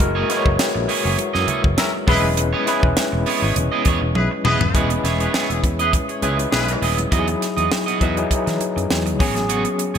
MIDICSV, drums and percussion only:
0, 0, Header, 1, 2, 480
1, 0, Start_track
1, 0, Time_signature, 4, 2, 24, 8
1, 0, Key_signature, 4, "major"
1, 0, Tempo, 593648
1, 8069, End_track
2, 0, Start_track
2, 0, Title_t, "Drums"
2, 0, Note_on_c, 9, 36, 109
2, 0, Note_on_c, 9, 42, 89
2, 80, Note_off_c, 9, 36, 0
2, 81, Note_off_c, 9, 42, 0
2, 240, Note_on_c, 9, 42, 76
2, 241, Note_on_c, 9, 38, 31
2, 321, Note_off_c, 9, 42, 0
2, 322, Note_off_c, 9, 38, 0
2, 369, Note_on_c, 9, 36, 89
2, 450, Note_off_c, 9, 36, 0
2, 479, Note_on_c, 9, 38, 120
2, 480, Note_on_c, 9, 42, 105
2, 480, Note_on_c, 9, 63, 65
2, 560, Note_off_c, 9, 38, 0
2, 561, Note_off_c, 9, 42, 0
2, 561, Note_off_c, 9, 63, 0
2, 719, Note_on_c, 9, 46, 79
2, 799, Note_off_c, 9, 46, 0
2, 959, Note_on_c, 9, 42, 88
2, 959, Note_on_c, 9, 62, 48
2, 1040, Note_off_c, 9, 42, 0
2, 1040, Note_off_c, 9, 62, 0
2, 1088, Note_on_c, 9, 38, 36
2, 1169, Note_off_c, 9, 38, 0
2, 1192, Note_on_c, 9, 62, 49
2, 1192, Note_on_c, 9, 64, 69
2, 1196, Note_on_c, 9, 42, 58
2, 1273, Note_off_c, 9, 62, 0
2, 1273, Note_off_c, 9, 64, 0
2, 1277, Note_off_c, 9, 42, 0
2, 1328, Note_on_c, 9, 36, 88
2, 1408, Note_off_c, 9, 36, 0
2, 1437, Note_on_c, 9, 38, 102
2, 1438, Note_on_c, 9, 42, 96
2, 1440, Note_on_c, 9, 63, 79
2, 1518, Note_off_c, 9, 38, 0
2, 1519, Note_off_c, 9, 42, 0
2, 1520, Note_off_c, 9, 63, 0
2, 1679, Note_on_c, 9, 36, 109
2, 1682, Note_on_c, 9, 46, 71
2, 1760, Note_off_c, 9, 36, 0
2, 1762, Note_off_c, 9, 46, 0
2, 1815, Note_on_c, 9, 63, 64
2, 1896, Note_off_c, 9, 63, 0
2, 1918, Note_on_c, 9, 42, 92
2, 1920, Note_on_c, 9, 62, 35
2, 1999, Note_off_c, 9, 42, 0
2, 2001, Note_off_c, 9, 62, 0
2, 2160, Note_on_c, 9, 42, 78
2, 2162, Note_on_c, 9, 38, 29
2, 2241, Note_off_c, 9, 42, 0
2, 2243, Note_off_c, 9, 38, 0
2, 2289, Note_on_c, 9, 36, 98
2, 2370, Note_off_c, 9, 36, 0
2, 2399, Note_on_c, 9, 38, 127
2, 2400, Note_on_c, 9, 42, 106
2, 2406, Note_on_c, 9, 63, 74
2, 2480, Note_off_c, 9, 38, 0
2, 2481, Note_off_c, 9, 42, 0
2, 2487, Note_off_c, 9, 63, 0
2, 2637, Note_on_c, 9, 46, 78
2, 2718, Note_off_c, 9, 46, 0
2, 2879, Note_on_c, 9, 42, 93
2, 2884, Note_on_c, 9, 62, 44
2, 2884, Note_on_c, 9, 64, 68
2, 2960, Note_off_c, 9, 42, 0
2, 2965, Note_off_c, 9, 62, 0
2, 2965, Note_off_c, 9, 64, 0
2, 3113, Note_on_c, 9, 42, 68
2, 3113, Note_on_c, 9, 62, 53
2, 3119, Note_on_c, 9, 36, 90
2, 3194, Note_off_c, 9, 42, 0
2, 3194, Note_off_c, 9, 62, 0
2, 3200, Note_off_c, 9, 36, 0
2, 3357, Note_on_c, 9, 63, 81
2, 3358, Note_on_c, 9, 48, 55
2, 3437, Note_off_c, 9, 63, 0
2, 3439, Note_off_c, 9, 48, 0
2, 3597, Note_on_c, 9, 45, 90
2, 3678, Note_off_c, 9, 45, 0
2, 3726, Note_on_c, 9, 43, 98
2, 3733, Note_on_c, 9, 63, 60
2, 3807, Note_off_c, 9, 43, 0
2, 3814, Note_off_c, 9, 63, 0
2, 3838, Note_on_c, 9, 36, 105
2, 3838, Note_on_c, 9, 42, 76
2, 3842, Note_on_c, 9, 62, 33
2, 3918, Note_off_c, 9, 36, 0
2, 3919, Note_off_c, 9, 42, 0
2, 3922, Note_off_c, 9, 62, 0
2, 3964, Note_on_c, 9, 42, 52
2, 4044, Note_off_c, 9, 42, 0
2, 4081, Note_on_c, 9, 42, 77
2, 4082, Note_on_c, 9, 38, 28
2, 4162, Note_off_c, 9, 42, 0
2, 4163, Note_off_c, 9, 38, 0
2, 4207, Note_on_c, 9, 42, 45
2, 4288, Note_off_c, 9, 42, 0
2, 4319, Note_on_c, 9, 38, 113
2, 4325, Note_on_c, 9, 63, 63
2, 4400, Note_off_c, 9, 38, 0
2, 4406, Note_off_c, 9, 63, 0
2, 4449, Note_on_c, 9, 42, 49
2, 4530, Note_off_c, 9, 42, 0
2, 4557, Note_on_c, 9, 36, 92
2, 4560, Note_on_c, 9, 42, 71
2, 4638, Note_off_c, 9, 36, 0
2, 4641, Note_off_c, 9, 42, 0
2, 4684, Note_on_c, 9, 42, 48
2, 4765, Note_off_c, 9, 42, 0
2, 4797, Note_on_c, 9, 36, 85
2, 4798, Note_on_c, 9, 42, 89
2, 4810, Note_on_c, 9, 62, 38
2, 4878, Note_off_c, 9, 36, 0
2, 4879, Note_off_c, 9, 42, 0
2, 4891, Note_off_c, 9, 62, 0
2, 4925, Note_on_c, 9, 42, 42
2, 5006, Note_off_c, 9, 42, 0
2, 5032, Note_on_c, 9, 62, 47
2, 5032, Note_on_c, 9, 64, 63
2, 5033, Note_on_c, 9, 42, 58
2, 5113, Note_off_c, 9, 62, 0
2, 5113, Note_off_c, 9, 64, 0
2, 5114, Note_off_c, 9, 42, 0
2, 5169, Note_on_c, 9, 42, 50
2, 5250, Note_off_c, 9, 42, 0
2, 5276, Note_on_c, 9, 38, 95
2, 5278, Note_on_c, 9, 63, 75
2, 5357, Note_off_c, 9, 38, 0
2, 5359, Note_off_c, 9, 63, 0
2, 5404, Note_on_c, 9, 42, 51
2, 5405, Note_on_c, 9, 63, 47
2, 5484, Note_off_c, 9, 42, 0
2, 5485, Note_off_c, 9, 63, 0
2, 5518, Note_on_c, 9, 46, 68
2, 5598, Note_off_c, 9, 46, 0
2, 5646, Note_on_c, 9, 42, 52
2, 5652, Note_on_c, 9, 63, 60
2, 5726, Note_off_c, 9, 42, 0
2, 5732, Note_off_c, 9, 63, 0
2, 5756, Note_on_c, 9, 42, 85
2, 5757, Note_on_c, 9, 36, 97
2, 5837, Note_off_c, 9, 42, 0
2, 5838, Note_off_c, 9, 36, 0
2, 5883, Note_on_c, 9, 42, 53
2, 5964, Note_off_c, 9, 42, 0
2, 6001, Note_on_c, 9, 42, 73
2, 6003, Note_on_c, 9, 38, 30
2, 6082, Note_off_c, 9, 42, 0
2, 6084, Note_off_c, 9, 38, 0
2, 6125, Note_on_c, 9, 42, 45
2, 6206, Note_off_c, 9, 42, 0
2, 6238, Note_on_c, 9, 38, 122
2, 6247, Note_on_c, 9, 63, 57
2, 6319, Note_off_c, 9, 38, 0
2, 6327, Note_off_c, 9, 63, 0
2, 6371, Note_on_c, 9, 42, 48
2, 6451, Note_off_c, 9, 42, 0
2, 6477, Note_on_c, 9, 36, 97
2, 6477, Note_on_c, 9, 42, 72
2, 6558, Note_off_c, 9, 36, 0
2, 6558, Note_off_c, 9, 42, 0
2, 6607, Note_on_c, 9, 42, 48
2, 6688, Note_off_c, 9, 42, 0
2, 6717, Note_on_c, 9, 36, 77
2, 6718, Note_on_c, 9, 42, 91
2, 6724, Note_on_c, 9, 62, 39
2, 6798, Note_off_c, 9, 36, 0
2, 6799, Note_off_c, 9, 42, 0
2, 6805, Note_off_c, 9, 62, 0
2, 6850, Note_on_c, 9, 42, 40
2, 6853, Note_on_c, 9, 38, 32
2, 6930, Note_off_c, 9, 42, 0
2, 6934, Note_off_c, 9, 38, 0
2, 6958, Note_on_c, 9, 42, 57
2, 6958, Note_on_c, 9, 62, 45
2, 7039, Note_off_c, 9, 42, 0
2, 7039, Note_off_c, 9, 62, 0
2, 7096, Note_on_c, 9, 42, 45
2, 7177, Note_off_c, 9, 42, 0
2, 7200, Note_on_c, 9, 38, 99
2, 7201, Note_on_c, 9, 63, 69
2, 7281, Note_off_c, 9, 38, 0
2, 7282, Note_off_c, 9, 63, 0
2, 7330, Note_on_c, 9, 42, 47
2, 7331, Note_on_c, 9, 63, 45
2, 7410, Note_off_c, 9, 42, 0
2, 7412, Note_off_c, 9, 63, 0
2, 7440, Note_on_c, 9, 36, 106
2, 7442, Note_on_c, 9, 46, 68
2, 7521, Note_off_c, 9, 36, 0
2, 7523, Note_off_c, 9, 46, 0
2, 7571, Note_on_c, 9, 42, 49
2, 7573, Note_on_c, 9, 38, 38
2, 7573, Note_on_c, 9, 63, 54
2, 7652, Note_off_c, 9, 42, 0
2, 7654, Note_off_c, 9, 38, 0
2, 7654, Note_off_c, 9, 63, 0
2, 7677, Note_on_c, 9, 42, 81
2, 7680, Note_on_c, 9, 62, 31
2, 7758, Note_off_c, 9, 42, 0
2, 7761, Note_off_c, 9, 62, 0
2, 7801, Note_on_c, 9, 42, 52
2, 7882, Note_off_c, 9, 42, 0
2, 7917, Note_on_c, 9, 42, 63
2, 7998, Note_off_c, 9, 42, 0
2, 8045, Note_on_c, 9, 42, 46
2, 8069, Note_off_c, 9, 42, 0
2, 8069, End_track
0, 0, End_of_file